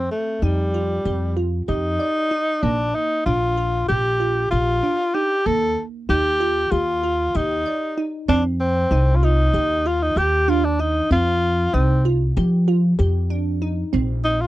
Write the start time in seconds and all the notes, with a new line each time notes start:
Already playing: C4
0.11 A3
0.42 F2 G3 D#4
0.74 F4
1.05 F2 G4
1.37 F4
1.68 F2 D#4 G4
1.99 D5
2.31 D#4
2.63 A#1 A#3 D4
2.95 D#4
3.25 A#1 D4 F4
3.57 F4
3.88 A#1 G4
4.20 F4
4.51 A#1 F4 G4
4.83 D4
5.14 D#4 G4
5.46 D#2 A#3 A4
6.09 D#2 D#4 G4
6.40 F4
6.71 D#2 F4 G4
7.03 F4
7.35 D#2 D#4 G4
7.66 D5
7.98 D#4
8.28 F2 C4 D4
8.60 C4
8.91 C2 D#4
9.15 F4
9.23 D#4 F4
9.53 D#2 G4
9.86 F4
10.02 D#4
10.16 D#2 G4
10.48 D4 F4
10.65 D4
10.79 D#4
11.11 F2 C4 F4
11.74 C2 C4 D#4
12.05 F4
12.37 F3 G4
12.68 F4
12.99 F2 G4
13.30 D4
13.62 D#4
13.93 A#1 C4
14.24 D#4
14.41 F4